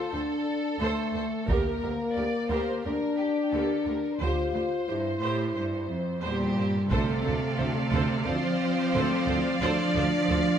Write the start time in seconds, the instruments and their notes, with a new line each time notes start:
Already playing: french horn section F4, viola section A4 C5, violin section A4
0.12 cello section D2, french horn section D4, viola section A4 C5
0.80 cello section D2, french horn section A3, viola section A4 C5
1.14 cello section D2, viola section A4 C5
1.48 double bass section D2, cello section D2, french horn section A#3, viola section G4 A#4, violin section A#4, taiko
1.83 cello section D2, viola section G4 A#4
2.16 cello section D2, viola section G4 A#4, violin section D5
2.50 cello section D2, viola section G4 A#4, violin section C5
2.85 cello section D2, french horn section D4, viola section G4 A#4, violin section A#4
3.19 violin section G4
3.52 cello section D2, viola section A#3 G4, violin section A4
3.86 cello section D2, viola section G4 A#4, violin section A#4
4.20 cello section D2, double bass section D2, french horn section F4, viola section G4 C5, violin section C5
4.54 cello section D2, viola section G4 C5
4.88 cello section G2, french horn section E4, viola section G4 C5
5.22 cello section A2, viola section G4 C5
5.56 cello section G2, viola section G4 C5
5.90 cello section F2
6.23 cello section E2 A#2, french horn section G3, violin section G4, viola section G4 C5
6.57 cello section G2, viola section G4 C5
6.90 double bass section D2, tuba D2, cello section C3, french horn section A3, violin section A4 D5 F5, viola section A4 C5, taiko
7.25 double bass section D2, tuba D2, viola section A4 C5
7.58 double bass section D2, tuba D2, viola section A4 C5
7.92 double bass section D2, tuba D2, viola section A4 C5
8.26 double bass section D2, tuba D2, cello section F3, french horn section C4, viola section A4 C5, violin section C5
8.94 double bass section D2, tuba D2, viola section A4 C5
9.28 double bass section D2, tuba D2, viola section A4 C5
9.61 double bass section D2, tuba D2, cello section F3, french horn section D4, viola section A4 C5, violin section D5
9.95 double bass section D2, tuba D2, viola section A4 C5
10.29 tuba D2, double bass section D2, viola section A4 C5